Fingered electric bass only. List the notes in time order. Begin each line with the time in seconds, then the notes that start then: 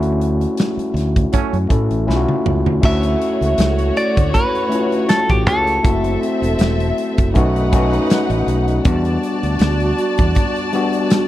Already playing: D2
0.77 muted fingered electric bass stroke
0.94 D2
1.53 F#2
1.71 A2
1.91 A1
2.08 B1
2.46 C#2
2.66 D2
2.83 D2
3.41 C#2
3.58 C#2
4.18 D2
5.30 A1
5.47 C#2
5.84 F#1
6.42 E1
6.59 E1
7.18 F#1
7.36 B1
8.30 A1
8.47 B1
8.85 E2
9.43 D2
9.60 D2
10.19 E2